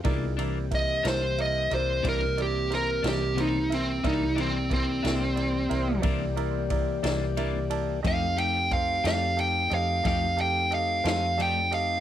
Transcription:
<<
  \new Staff \with { instrumentName = "Lead electric guitar" } { \time 12/8 \key c \mixolydian \tempo 4. = 60 r4 ees''8 c''8 ees''8 c''8 bes'8 g'8 bes'8 g'8 ees'8 c'8 | ees'8 c'8 c'2 r2. | f''8 g''8 f''8 f''8 g''8 f''8 f''8 g''8 f''8 f''8 g''8 f''8 | }
  \new Staff \with { instrumentName = "Upright piano" } { \time 12/8 \key c \mixolydian <e' bes' d''>8 <e' bes' d''>8 <e' bes' e''>8 <e' bes' c''>8 <e' bes' e''>8 <e' bes' d''>8 <e' bes' d''>8 <e' bes' d''>8 <e' bes' c''>8 <e' bes' d''>8 <e' bes' c''>8 <e' bes' e''>8 | <e' bes' e''>8 <e' bes' d''>8 <e' bes' d''>8 <e' bes' e''>8 <e' bes' d''>8 <e' bes' e''>8 <e' bes' d''>8 <e' bes' d''>8 <e' bes' d''>8 <e' bes' d''>8 <e' bes' d'' e''>8 <e' bes' d'' a''>8 | <g' a' ees''>8 <g' a' f''>8 <g' a' c''>8 <g' a' d''>8 <g' a' f''>8 <g' a' ees''>8 <g' a' ees''>8 <g' a' f''>8 <g' a' ees''>8 <g' a' c''>8 <g' a' d''>8 <g' a' ees''>8 | }
  \new Staff \with { instrumentName = "Tonewheel organ" } { \time 12/8 \key c \mixolydian <b ees' f' aes'>8 <e bes c' g'>1~ <e bes c' g'>4. | <e bes g' d''>1. | <a c' ees' g'>1. | }
  \new Staff \with { instrumentName = "Clean electric guitar" } { \time 12/8 \key c \mixolydian <c e bes d'>8 <e bes d'>8 r8 <e bes d'>8 r4 <c e bes d'>8 r4 <e bes d'>8 <c e bes d'>8 r8 | <c e bes d'>8 <e bes d'>8 r8 <e bes d'>8 r4 <c e bes d'>8 r4 <e bes d'>8 <c e bes d'>8 r8 | <f a ees' g'>8 <a ees' g'>8 r8 <a ees' g'>8 r4 <f a ees' g'>8 r4 <a ees' g'>8 <f a ees' g'>8 r8 | }
  \new Staff \with { instrumentName = "Fingered electric bass" } { \clef bass \time 12/8 \key c \mixolydian c,4. c,4 c,8 c,4. c,4. | c,4. c,4 c,8 c,4. c,4. | f,4. f,4 f,8 f,4. f,4. | }
  \new DrumStaff \with { instrumentName = "Drums" } \drummode { \time 12/8 <bd cymr>8 cymr8 <bd cymr>8 <cymr sn>8 cymr8 cymr8 <bd cymr>8 cymr8 <cymr sn>8 <cymr sn>8 cymr8 cymr8 | <bd cymr>8 cymr8 <bd cymr>8 <cymr sn>8 cymr8 cymr8 <bd cymr>8 cymr8 <bd cymr>8 <cymr sn>8 cymr8 cymr8 | <bd cymr>8 cymr8 <bd cymr>8 <cymr sn>8 cymr8 cymr8 <bd cymr sn>8 cymr8 cymr8 <cymr sn>8 cymr8 cymr8 | }
>>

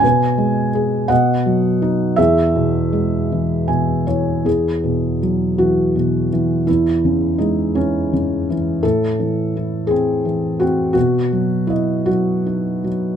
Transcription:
<<
  \new Staff \with { instrumentName = "Felt piano" } { \time 6/8 \key e \major \tempo 4. = 55 << { b'4. dis''4. | gis'2~ gis'8 r8 | r2. | r2. |
r2. | r2. | } \\ { gis''4 r8 fis''4. | e''2~ e''8 r8 | gis'4 r8 fis'4 r8 | e'4 dis'8 cis'4 r8 |
a'4. gis'4 fis'8 | fis'4 e'8 fis'4 r8 | } >> }
  \new Staff \with { instrumentName = "Felt piano" } { \clef bass \time 6/8 \key e \major b,8 gis8 gis'8 b,8 fis8 dis'8 | e,8 b,8 gis8 e8 <b, gis''>8 <e cis''>8 | e,8 b,8 fis8 e8 b,8 e8 | e,8 cis8 gis8 e8 cis8 e8 |
a,8 e8 e'8 c'8 e8 c'8 | b,8 fis8 dis''8 fis8 dis'8 fis8 | }
>>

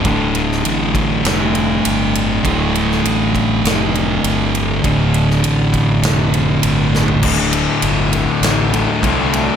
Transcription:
<<
  \new Staff \with { instrumentName = "Synth drone" } { \clef bass \time 4/4 \key c \dorian \tempo 4 = 100 <d g d'>1~ | <d g d'>1~ | <d g d'>1 | <d a d'>1 | }
  \new Staff \with { instrumentName = "Distorted electric guitar" } { \clef bass \time 4/4 \key c \dorian <d, a, d>1 | <d, a, d>1 | <d, a, d>1 | <d, a, d>2~ <d, a, d>8 <d, a, d>8 <d, a, d>4 | }
  \new Staff \with { instrumentName = "Distorted electric guitar" } { \clef bass \time 4/4 \key c \dorian <d, a, d>1 | <d, a, d>1 | <d, a, d>1 | r1 | }
  \new Staff \with { instrumentName = "Distorted electric guitar" } { \clef bass \time 4/4 \key c \dorian r1 | r1 | r1 | <d, a, d>4. <d, a, d>4. <d, a, d>4 | }
  \new Staff \with { instrumentName = "Fingered electric bass" } { \clef bass \time 4/4 \key c \dorian d,,4 a,,4 f,,4 g,,4 | d,,4 a,,4 f,,4 g,,4 | d,,4 a,,4 f,,4 g,,4 | d,,4 g,,4 a,,4 c,4 | }
  \new DrumStaff \with { instrumentName = "Drums" } \drummode { \time 4/4 <bd cymr>8 cymr16 sn16 cymr8 <bd cymr>8 <cymr sn>8 cymr8 cymr8 cymr8 | <bd cymr>8 cymr16 sn16 cymr8 <bd cymr>8 <cymr sn>8 cymr8 cymr8 cymr8 | <bd cymr>8 cymr16 sn16 cymr8 <bd cymr>8 <cymr sn>8 cymr8 cymr8 sn16 tomfh16 | <cymc bd>8 cymr8 cymr8 cymr8 <cymr sn>8 cymr8 <bd cymr>8 cymr8 | }
>>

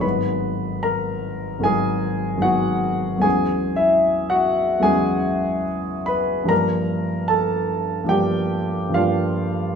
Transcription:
<<
  \new Staff \with { instrumentName = "Grand piano" } { \time 4/4 \key e \mixolydian \tempo 4 = 74 <b' b''>4 <ais' ais''>4 <gis' gis''>4 <fis' fis''>4 | \tuplet 3/2 { <gis' gis''>4 <e' e''>8~ <e' e''>8 <fis' fis''>4 } <gis' gis''>4 r8 <b' b''>8 | \key g \dorian <bes' bes''>4 <a' a''>4 <g' g''>4 <f' f''>4 | }
  \new Staff \with { instrumentName = "Grand piano" } { \clef bass \time 4/4 \key e \mixolydian <gis,, fis gis b dis'>2 <gis,, fis gis b dis'>4 <gis,, fis gis b dis'>4 | <e, fis gis b cis'>2 <e, fis gis b cis'>2 | \key g \dorian <g, f g bes d'>2 <g, f g bes d'>4 <g, f g bes d'>4 | }
>>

